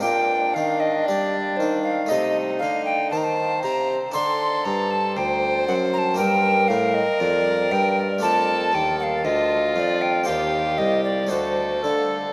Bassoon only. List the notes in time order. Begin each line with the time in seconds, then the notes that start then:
0.02 A#2
0.55 D#3
1.07 G3
1.59 D#3
2.11 C3
2.61 D3
3.12 D#3
3.63 C3
4.15 D3
4.66 G2
5.18 D2
5.68 F#2
6.19 G2
6.70 A2
7.21 F2
7.72 G2
8.23 F2
8.74 D#2
9.24 D2
9.76 F2
10.27 D#2
10.79 C2
11.31 D2
11.84 D3